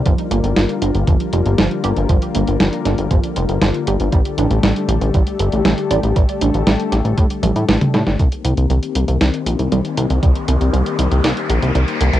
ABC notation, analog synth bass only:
X:1
M:4/4
L:1/16
Q:1/4=118
K:Cdor
V:1 name="Analog synth bass" clef=bass
G,,, z G,,, G,,, G,,, z G,,, G,,, G,,, z F,,, G,,, G,,, z G,,, G,,, | G,,, z G,,, G,,, G,,, z G,,, G,,, G,,, z F,,, G,,, G,,, z G,,, G,,, | A,,, z A,,, A,,, A,,, z A,,, A,,, A,,, z G,,, A,,, A,,, z A,,, A,,, | A,,, z A,,, A,,, A,,, z A,,, A,,, A,, z A,,, A,, A,,, z A,, G,,, |
C,, z C,, C,, C,, z C,, C,, C,, z B,,, C,, C,, z C,, C,, | C,, z C,, C,, C,, z C,, C,, C,, z B,,, C,, C,, z C,, C,, |]